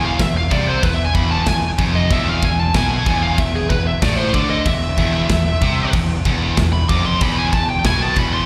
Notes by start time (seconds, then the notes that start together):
Already playing: E1 E2
0.05 F5
0.19 E1 E2 E5, kick, snare, crash
0.37 F5
0.51 C2 C3 D5, kick, crash
0.67 C5
0.83 E1 E2 B4, kick, crash
0.94 E5
1.05 G#5
1.14 E1 E2 B5, kick, crash
1.31 A5
1.46 E1 E2 G#5, kick, snare, crash
1.78 F1 F2, kick, crash
1.96 D#5
2.10 E1 E2 E5, kick, crash
2.29 F5
2.42 E1 E2 G#5, kick, crash
2.60 A5
2.74 B1 B2 G#5, kick, snare, crash
3.06 E1 E2, kick, crash
3.23 F5
3.38 E1 E2 E5, kick, crash
3.55 G#4
3.70 E1 E2 B4, kick, crash
3.87 E5
4.02 A1 A2 D5, kick, snare, crash
4.17 C5
4.34 D2 D3 D5, kick, crash
4.50 D#5
4.65 E1 E2 E5, kick, crash
4.97 E1 E2, kick, crash
5.29 E1 E2, kick, snare, crash
5.61 C2 C3, kick, crash
5.93 E1 E2, kick, crash
6.25 E1 E2, kick, crash
6.57 E1 E2, kick, snare, crash
6.73 B5
6.89 F1 F2 D6, kick, crash
7.06 C6
7.21 E1 E2 B5, kick, crash
7.38 G#5
7.52 E1 E2 A5, kick, crash
7.70 G5
7.84 B1 B2 G#5, kick, snare, crash
8.03 A5
8.16 E1 E2 B5, kick, crash
8.33 C6